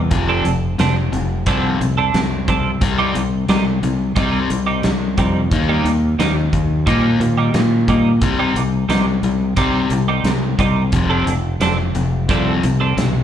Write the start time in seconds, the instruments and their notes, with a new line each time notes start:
0.10 fingered electric bass F1, overdriven electric guitar F2 C3 F3, kick, closed hi-hat
0.29 clean electric guitar F3 C4 D4 A4
0.44 fingered electric bass F1, overdriven electric guitar F2 C3, closed hi-hat
0.78 fingered electric bass F1, overdriven electric guitar F2 C3, clean electric guitar F3 C4 D4 A4, snare, closed hi-hat
0.96 muted clean electric guitar stroke
1.12 fingered electric bass F1, overdriven electric guitar F2 C3, closed hi-hat
1.46 fingered electric bass C2, overdriven electric guitar F2 C3 F3, clean electric guitar F3 C4 D4 A4, kick, closed hi-hat
1.80 fingered electric bass C2, overdriven electric guitar F2 C3, muted clean electric guitar stroke, closed hi-hat
1.97 clean electric guitar F3 C4 D4 A4
2.14 fingered electric bass C2, overdriven electric guitar F2 C3, snare, closed hi-hat
2.48 overdriven electric guitar F2 C3, clean electric guitar F3 C4 D4 A4, kick, closed hi-hat
2.81 fingered electric bass C2, overdriven electric guitar C3 G3 C4, kick, closed hi-hat
2.98 clean electric guitar G3 C4 D#4 G4
3.15 fingered electric bass C2, overdriven electric guitar C3 G3, closed hi-hat
3.49 fingered electric bass C2, overdriven electric guitar C3 G3, clean electric guitar G3 C4 D#4 G4, snare, closed hi-hat
3.66 muted clean electric guitar stroke
3.83 fingered electric bass C2, overdriven electric guitar C3 G3, closed hi-hat
4.16 fingered electric bass C2, overdriven electric guitar C3 G3 C4, clean electric guitar G3 C4 D#4 G4, kick, closed hi-hat
4.50 fingered electric bass C2, overdriven electric guitar C3 G3, muted clean electric guitar stroke, closed hi-hat
4.66 clean electric guitar G3 C4 D#4 G4
4.83 fingered electric bass C2, overdriven electric guitar C3 G3, snare, closed hi-hat
5.17 fingered electric bass F2, overdriven electric guitar C3 G3, clean electric guitar G3 C4 D#4 G4, kick, closed hi-hat
5.51 fingered electric bass D#2, overdriven electric guitar D#3 A#3 D#4, kick, closed hi-hat
5.69 clean electric guitar G3 A#3 D#4 G4
5.85 fingered electric bass D#2, overdriven electric guitar D#3 A#3, closed hi-hat
6.19 fingered electric bass D#2, overdriven electric guitar D#3 A#3, clean electric guitar G3 A#3 D#4 G4, snare, closed hi-hat
6.37 muted clean electric guitar stroke
6.53 fingered electric bass D#2, overdriven electric guitar D#3 A#3, kick, closed hi-hat
6.86 fingered electric bass A#2, overdriven electric guitar D#3 A#3 D#4, clean electric guitar G3 A#3 D#4 G4, kick, closed hi-hat
7.20 fingered electric bass A#2, overdriven electric guitar D#3 A#3, muted clean electric guitar stroke, closed hi-hat
7.38 clean electric guitar G3 A#3 D#4 G4
7.54 fingered electric bass A#2, overdriven electric guitar D#3 A#3, snare, closed hi-hat
7.88 overdriven electric guitar D#3 A#3, clean electric guitar G3 A#3 D#4 G4, kick, closed hi-hat
8.21 fingered electric bass C2, overdriven electric guitar C3 G3 C4, kick, closed hi-hat
8.39 clean electric guitar G3 C4 D#4 G4
8.56 fingered electric bass C2, overdriven electric guitar C3 G3, closed hi-hat
8.89 fingered electric bass C2, overdriven electric guitar C3 G3, clean electric guitar G3 C4 D#4 G4, snare, closed hi-hat
9.07 muted clean electric guitar stroke
9.23 fingered electric bass C2, overdriven electric guitar C3 G3, closed hi-hat
9.57 fingered electric bass C2, overdriven electric guitar C3 G3 C4, clean electric guitar G3 C4 D#4 G4, kick, closed hi-hat
9.90 fingered electric bass C2, overdriven electric guitar C3 G3, muted clean electric guitar stroke, closed hi-hat
10.08 clean electric guitar G3 C4 D#4 G4
10.24 fingered electric bass C2, overdriven electric guitar C3 G3, snare, closed hi-hat
10.59 fingered electric bass C2, overdriven electric guitar C3 G3, clean electric guitar G3 C4 D#4 G4, kick, closed hi-hat
10.92 fingered electric bass F1, overdriven electric guitar F2 C3 F3, kick, closed hi-hat
11.10 clean electric guitar F3 C4 D4 A4
11.26 fingered electric bass F1, overdriven electric guitar F2 C3, closed hi-hat
11.60 fingered electric bass F1, overdriven electric guitar F2 C3, clean electric guitar F3 C4 D4 A4, snare, closed hi-hat
11.78 muted clean electric guitar stroke
11.95 fingered electric bass F1, overdriven electric guitar F2 C3, closed hi-hat
12.29 fingered electric bass C2, overdriven electric guitar F2 C3 F3, clean electric guitar F3 C4 D4 A4, kick, closed hi-hat
12.63 fingered electric bass C2, overdriven electric guitar F2 C3, muted clean electric guitar stroke, closed hi-hat
12.80 clean electric guitar F3 C4 D4 A4
12.97 fingered electric bass B1, overdriven electric guitar F2 C3, snare, closed hi-hat